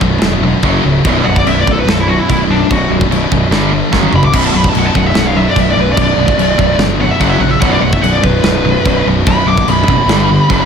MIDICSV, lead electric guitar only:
0, 0, Header, 1, 2, 480
1, 0, Start_track
1, 0, Key_signature, 2, "minor"
1, 0, Tempo, 410678
1, 1230, Time_signature, 4, 2, 24, 8
1, 12450, End_track
2, 0, Start_track
2, 0, Title_t, "Lead electric guitar"
2, 0, Program_c, 0, 29
2, 1468, Note_on_c, 0, 78, 96
2, 1586, Note_off_c, 0, 78, 0
2, 1612, Note_on_c, 0, 74, 89
2, 1718, Note_off_c, 0, 74, 0
2, 1733, Note_on_c, 0, 76, 100
2, 1839, Note_off_c, 0, 76, 0
2, 1873, Note_on_c, 0, 74, 89
2, 1969, Note_off_c, 0, 74, 0
2, 2000, Note_on_c, 0, 69, 78
2, 2093, Note_off_c, 0, 69, 0
2, 2101, Note_on_c, 0, 71, 92
2, 2215, Note_off_c, 0, 71, 0
2, 2215, Note_on_c, 0, 69, 91
2, 2320, Note_off_c, 0, 69, 0
2, 2337, Note_on_c, 0, 64, 90
2, 2439, Note_off_c, 0, 64, 0
2, 2444, Note_on_c, 0, 66, 81
2, 2560, Note_off_c, 0, 66, 0
2, 2560, Note_on_c, 0, 64, 93
2, 2673, Note_off_c, 0, 64, 0
2, 2689, Note_on_c, 0, 64, 91
2, 2798, Note_off_c, 0, 64, 0
2, 2934, Note_on_c, 0, 62, 81
2, 3156, Note_off_c, 0, 62, 0
2, 3167, Note_on_c, 0, 66, 96
2, 3393, Note_off_c, 0, 66, 0
2, 4860, Note_on_c, 0, 83, 93
2, 4963, Note_off_c, 0, 83, 0
2, 4971, Note_on_c, 0, 86, 97
2, 5079, Note_off_c, 0, 86, 0
2, 5094, Note_on_c, 0, 83, 95
2, 5200, Note_off_c, 0, 83, 0
2, 5214, Note_on_c, 0, 81, 91
2, 5333, Note_off_c, 0, 81, 0
2, 5333, Note_on_c, 0, 83, 86
2, 5480, Note_off_c, 0, 83, 0
2, 5480, Note_on_c, 0, 81, 86
2, 5591, Note_off_c, 0, 81, 0
2, 5591, Note_on_c, 0, 78, 103
2, 5684, Note_off_c, 0, 78, 0
2, 5689, Note_on_c, 0, 81, 99
2, 5796, Note_on_c, 0, 78, 84
2, 5798, Note_off_c, 0, 81, 0
2, 5911, Note_off_c, 0, 78, 0
2, 5927, Note_on_c, 0, 76, 100
2, 6036, Note_off_c, 0, 76, 0
2, 6060, Note_on_c, 0, 78, 101
2, 6157, Note_off_c, 0, 78, 0
2, 6162, Note_on_c, 0, 77, 98
2, 6274, Note_off_c, 0, 77, 0
2, 6282, Note_on_c, 0, 76, 90
2, 6394, Note_off_c, 0, 76, 0
2, 6426, Note_on_c, 0, 74, 100
2, 6526, Note_off_c, 0, 74, 0
2, 6544, Note_on_c, 0, 76, 93
2, 6645, Note_off_c, 0, 76, 0
2, 6665, Note_on_c, 0, 74, 80
2, 6789, Note_off_c, 0, 74, 0
2, 6789, Note_on_c, 0, 71, 99
2, 6888, Note_off_c, 0, 71, 0
2, 6926, Note_on_c, 0, 74, 95
2, 7016, Note_off_c, 0, 74, 0
2, 7042, Note_on_c, 0, 74, 109
2, 7949, Note_off_c, 0, 74, 0
2, 8200, Note_on_c, 0, 78, 99
2, 8307, Note_off_c, 0, 78, 0
2, 8307, Note_on_c, 0, 76, 94
2, 8416, Note_off_c, 0, 76, 0
2, 8416, Note_on_c, 0, 78, 98
2, 8526, Note_off_c, 0, 78, 0
2, 8526, Note_on_c, 0, 76, 93
2, 8647, Note_off_c, 0, 76, 0
2, 8647, Note_on_c, 0, 78, 100
2, 8774, Note_off_c, 0, 78, 0
2, 8774, Note_on_c, 0, 76, 91
2, 8886, Note_off_c, 0, 76, 0
2, 8891, Note_on_c, 0, 78, 99
2, 9014, Note_on_c, 0, 74, 93
2, 9017, Note_off_c, 0, 78, 0
2, 9133, Note_on_c, 0, 78, 102
2, 9138, Note_off_c, 0, 74, 0
2, 9266, Note_off_c, 0, 78, 0
2, 9266, Note_on_c, 0, 76, 85
2, 9366, Note_off_c, 0, 76, 0
2, 9366, Note_on_c, 0, 78, 107
2, 9494, Note_off_c, 0, 78, 0
2, 9498, Note_on_c, 0, 74, 111
2, 9628, Note_off_c, 0, 74, 0
2, 9628, Note_on_c, 0, 71, 96
2, 10560, Note_off_c, 0, 71, 0
2, 10845, Note_on_c, 0, 83, 120
2, 11070, Note_off_c, 0, 83, 0
2, 11079, Note_on_c, 0, 86, 95
2, 11307, Note_off_c, 0, 86, 0
2, 11335, Note_on_c, 0, 83, 125
2, 12450, Note_off_c, 0, 83, 0
2, 12450, End_track
0, 0, End_of_file